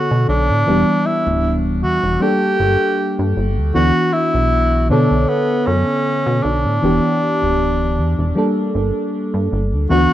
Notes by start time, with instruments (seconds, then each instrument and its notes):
Already playing: fm electric piano D3 B3 A4 C#5, tenor saxophone F#4
0.11 analog synth bass B2
0.29 analog synth bass B1, tenor saxophone D4
0.50 analog synth bass A2
0.66 analog synth bass E1, fm electric piano E3 G3 B3 D4
1.06 tenor saxophone E4
1.27 analog synth bass D1
1.83 analog synth bass E2, tenor saxophone F#4
2.04 analog synth bass E1
2.20 fm electric piano G3 A#3 D4 A4, tenor saxophone G4
2.60 analog synth bass G1
3.19 analog synth bass G2
3.37 analog synth bass G1
3.57 analog synth bass D2
3.74 analog synth bass D2, fm electric piano E3 B3 D4 F#4, tenor saxophone F#4
4.13 tenor saxophone E4
4.34 analog synth bass B1
4.89 analog synth bass B2, fm electric piano D3 B3 A4 C#5, tenor saxophone D4
5.11 analog synth bass B1
5.28 tenor saxophone B3
5.67 analog synth bass F#2, tenor saxophone C#4
6.27 analog synth bass B2
6.43 analog synth bass B1, tenor saxophone D4
6.65 analog synth bass A2
6.82 analog synth bass E1, fm electric piano E3 B3 D4 G4
7.42 analog synth bass D1
7.98 analog synth bass E2
8.19 analog synth bass E1
8.35 fm electric piano G3 A#3 D4 A4
8.75 analog synth bass G1
9.34 analog synth bass G2
9.52 analog synth bass G1
9.73 analog synth bass D2
9.89 analog synth bass D2, fm electric piano E3 B3 D4 F#4, tenor saxophone F#4